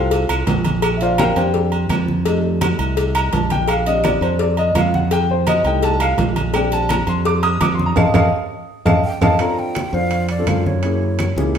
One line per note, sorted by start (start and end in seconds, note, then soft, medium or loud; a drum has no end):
0.00 0.27 C2 loud
0.00 0.45 F4 medium
0.00 0.45 A4 medium
0.00 0.45 C5 medium
0.00 0.44 F5 medium
0.11 cowbell loud
0.11 high conga soft
0.11 low agogo medium
0.29 0.46 C2 medium
0.29 cowbell medium
0.29 high conga soft
0.29 low agogo loud
0.29 claves medium
0.47 1.31 A#1 loud
0.47 cowbell medium
0.47 high conga medium
0.47 low timbale medium
0.47 low agogo medium
0.65 cowbell medium
0.65 high conga medium
0.65 low agogo medium
0.82 cowbell loud
0.82 high conga soft
0.82 low agogo loud
0.82 claves medium
0.97 0.99 E5 medium
0.97 low agogo medium
1.02 1.19 F4 medium
1.02 1.19 C5 medium
1.02 1.19 D5 medium
1.02 1.18 F5 medium
1.02 high conga soft
1.18 1.36 A#4 medium
1.18 1.36 F5 medium
1.18 1.35 G5 loud
1.18 1.36 A#5 loud
1.18 cowbell medium
1.18 high conga loud
1.18 low agogo loud
1.18 claves medium
1.36 1.86 F2 loud
1.36 1.87 G3 soft
1.36 1.87 C4 soft
1.36 1.88 D4 medium
1.36 1.87 G4 medium
1.36 1.87 C5 medium
1.36 1.86 D5 medium
1.36 1.86 G5 medium
1.36 low agogo medium
1.54 cowbell loud
1.54 high conga soft
1.72 high conga soft
1.72 low agogo medium
1.89 2.73 F2 loud
1.89 cowbell medium
1.89 high conga medium
1.89 low timbale medium
1.89 low agogo loud
1.89 claves medium
2.08 high conga medium
2.25 3.65 G3 medium
2.25 3.65 A3 medium
2.25 3.65 D#4 medium
2.25 cowbell loud
2.25 high conga soft
2.25 low agogo medium
2.44 high conga soft
2.61 cowbell medium
2.61 high conga loud
2.61 low agogo loud
2.61 claves medium
2.79 3.29 C2 loud
2.79 high conga soft
2.79 low agogo medium
2.97 cowbell loud
2.97 high conga soft
2.97 low agogo medium
3.15 3.33 A#5 loud
3.15 cowbell medium
3.15 high conga soft
3.15 low agogo loud
3.15 claves medium
3.33 4.16 A#1 medium
3.33 3.50 A5 medium
3.33 cowbell medium
3.33 high conga medium
3.33 low timbale medium
3.33 low agogo medium
3.50 3.68 G5 loud
3.50 cowbell medium
3.50 high conga medium
3.50 low agogo medium
3.68 3.86 F5 medium
3.68 cowbell loud
3.68 high conga soft
3.68 low agogo loud
3.68 claves medium
3.86 4.37 G3 medium
3.86 4.37 C4 soft
3.86 4.38 D4 medium
3.86 4.04 D#5 medium
3.86 high conga soft
3.86 low agogo medium
4.04 4.22 D5 loud
4.04 cowbell medium
4.04 high conga loud
4.04 low agogo loud
4.04 claves medium
4.21 4.71 F2 medium
4.21 4.40 C5 medium
4.21 low agogo medium
4.39 4.57 D5 medium
4.39 cowbell loud
4.39 high conga soft
4.57 4.75 D#5 medium
4.57 high conga soft
4.57 low agogo medium
4.75 5.58 F2 medium
4.75 4.93 F5 medium
4.75 cowbell medium
4.75 high conga medium
4.75 low timbale medium
4.75 low agogo loud
4.75 claves medium
4.94 5.11 F#5 loud
4.94 high conga medium
5.11 5.29 G5 loud
5.11 cowbell loud
5.11 high conga soft
5.11 low agogo medium
5.30 5.47 C5 medium
5.30 high conga soft
5.47 5.65 D#5 loud
5.47 cowbell medium
5.47 high conga loud
5.47 low agogo loud
5.47 claves medium
5.64 6.14 C2 loud
5.64 6.50 G3 medium
5.64 6.51 A3 medium
5.64 6.51 D#4 medium
5.64 5.83 G5 medium
5.64 high conga soft
5.64 low agogo medium
5.82 6.00 A5 loud
5.82 cowbell loud
5.82 high conga soft
5.82 low agogo medium
6.00 6.12 F5 loud
6.00 cowbell medium
6.00 high conga soft
6.00 low agogo loud
6.00 claves medium
6.18 7.01 A#1 loud
6.18 cowbell medium
6.18 high conga medium
6.18 low timbale medium
6.18 low agogo medium
6.36 cowbell medium
6.36 high conga medium
6.36 low agogo medium
6.54 7.93 G3 medium
6.54 7.93 C4 medium
6.54 7.93 D4 medium
6.54 6.72 G5 medium
6.54 cowbell loud
6.54 high conga soft
6.54 low agogo loud
6.54 claves medium
6.72 6.90 A5 loud
6.72 high conga soft
6.72 low agogo medium
6.89 7.07 A#5 loud
6.89 cowbell medium
6.89 high conga loud
6.89 low agogo loud
6.89 claves medium
7.07 7.57 F2 loud
7.07 7.25 C6 medium
7.07 low agogo medium
7.25 7.43 D6 loud
7.25 cowbell loud
7.25 high conga soft
7.43 7.60 D#6 loud
7.43 high conga soft
7.43 low agogo loud
7.61 7.94 F2 medium
7.61 7.73 D6 loud
7.61 cowbell medium
7.61 high conga medium
7.61 low timbale medium
7.61 low agogo loud
7.61 claves medium
7.74 7.85 C6 medium
7.79 high conga medium
7.86 7.97 A#5 loud
7.96 8.10 F2 loud
7.96 8.08 D#5 medium
7.96 8.08 F5 medium
7.96 8.08 A5 loud
7.96 cowbell loud
7.96 low conga loud
7.96 high timbale loud
7.96 claves loud
8.14 8.28 F2 loud
8.14 8.26 D#5 medium
8.14 8.26 F5 loud
8.14 8.26 A5 medium
8.14 cowbell medium
8.14 low conga loud
8.14 high timbale loud
8.14 claves loud
8.85 8.99 F2 medium
8.85 8.97 D#5 loud
8.85 8.97 F5 medium
8.85 8.97 A5 loud
8.85 cowbell loud
8.85 low conga loud
8.85 high timbale loud
8.85 claves loud
9.04 9.24 G5 loud
9.21 9.35 F2 loud
9.21 9.34 D#5 medium
9.21 9.33 F5 loud
9.21 9.34 A5 loud
9.21 9.42 A5 medium
9.21 cowbell medium
9.21 low conga loud
9.21 high timbale loud
9.21 claves loud
9.39 9.77 C4 medium
9.39 9.77 D4 medium
9.39 9.78 F4 medium
9.39 9.78 A4 medium
9.39 9.60 A#5 loud
9.39 high conga soft
9.39 high timbale medium
9.39 claves medium
9.59 9.96 G5 medium
9.59 high conga soft
9.75 high conga medium
9.75 high timbale medium
9.75 claves medium
9.93 10.43 F2 medium
9.93 10.25 C4 medium
9.93 10.25 D4 medium
9.93 10.25 F4 medium
9.93 10.25 C5 medium
9.93 10.29 F5 medium
9.93 high conga soft
10.11 high conga soft
10.11 high timbale medium
10.29 10.50 D5 medium
10.29 high conga soft
10.29 high timbale medium
10.38 10.70 C4 medium
10.38 10.70 D4 medium
10.38 10.70 F4 medium
10.38 10.70 A4 medium
10.47 11.31 F#2 medium
10.47 10.68 F5 medium
10.47 high conga medium
10.47 high timbale medium
10.47 low timbale medium
10.47 claves medium
10.66 11.38 C#5 medium
10.66 high conga medium
10.83 11.21 A#3 medium
10.83 11.21 C#4 medium
10.83 11.21 E4 medium
10.83 11.22 G#4 medium
10.83 high conga soft
10.83 high timbale medium
11.03 high conga soft
11.19 high conga medium
11.19 high timbale medium
11.19 claves medium
11.36 11.58 C#2 medium
11.36 11.58 A#3 medium
11.36 11.58 C#4 medium
11.36 11.58 E4 medium
11.36 11.58 G#4 medium
11.36 high conga medium
11.55 high timbale medium